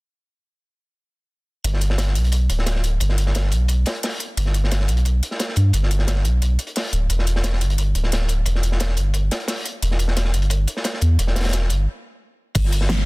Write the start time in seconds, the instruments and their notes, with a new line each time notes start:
1.64 sub bass G1, closed hi-hat
1.74 snare
1.81 closed hi-hat
1.90 snare
1.98 snare, closed hi-hat
2.07 snare
2.15 sub bass B1, closed hi-hat
2.24 closed hi-hat
2.32 closed hi-hat
2.50 sub bass D1, closed hi-hat
2.59 snare
2.66 snare, closed hi-hat
2.76 snare
2.84 closed hi-hat
3.00 sub bass G1, closed hi-hat
3.09 snare
3.18 closed hi-hat
3.26 snare
3.35 snare, closed hi-hat
3.44 snare
3.52 sub bass B1, closed hi-hat
3.68 closed hi-hat
3.86 snare, closed hi-hat
3.95 closed hi-hat
4.03 snare, closed hi-hat, open hi-hat
4.20 closed hi-hat
4.37 sub bass G1, closed hi-hat
4.46 snare
4.54 closed hi-hat
4.64 snare
4.71 snare, closed hi-hat
4.80 snare
4.88 sub bass B1, closed hi-hat
4.97 closed hi-hat
5.05 closed hi-hat
5.23 closed hi-hat
5.31 snare
5.39 snare, closed hi-hat
5.49 snare
5.56 sub bass G2, closed hi-hat
5.73 sub bass G1, closed hi-hat
5.83 snare
5.91 closed hi-hat
5.99 snare
6.07 snare, closed hi-hat
6.16 snare
6.25 sub bass B1, closed hi-hat
6.42 closed hi-hat
6.59 closed hi-hat
6.67 closed hi-hat
6.76 snare, closed hi-hat, open hi-hat
6.93 sub bass D1, closed hi-hat
7.10 sub bass E1, closed hi-hat
7.19 snare
7.27 closed hi-hat
7.36 snare
7.44 snare, closed hi-hat
7.53 snare
7.61 sub bass G1, closed hi-hat
7.70 closed hi-hat
7.78 closed hi-hat
7.95 sub bass D1, closed hi-hat
8.03 snare
8.12 snare, closed hi-hat
8.22 snare
8.29 closed hi-hat
8.46 sub bass E1, closed hi-hat
8.55 snare
8.63 closed hi-hat
8.72 snare
8.80 snare, closed hi-hat
8.89 snare
8.97 sub bass G1, closed hi-hat
9.14 closed hi-hat
9.31 snare, closed hi-hat
9.40 closed hi-hat
9.48 snare, closed hi-hat, open hi-hat
9.65 closed hi-hat
9.82 sub bass E1, closed hi-hat
9.91 snare
9.99 closed hi-hat
10.08 snare
10.17 snare, closed hi-hat
10.25 snare
10.34 sub bass G1, closed hi-hat
10.42 closed hi-hat
10.50 closed hi-hat
10.68 closed hi-hat
10.77 snare
10.84 snare, closed hi-hat
10.93 snare
11.01 sub bass E2, closed hi-hat
11.19 sub bass E1, closed hi-hat
11.27 snare
11.36 snare, closed hi-hat
11.41 snare, closed hi-hat
11.44 snare, closed hi-hat
11.49 snare, closed hi-hat
11.53 snare, closed hi-hat
11.62 snare
11.70 sub bass G1, closed hi-hat
12.55 sub bass G1, kick, closed hi-hat, crash
12.65 snare
12.72 closed hi-hat
12.81 snare
12.89 snare, closed hi-hat
12.98 snare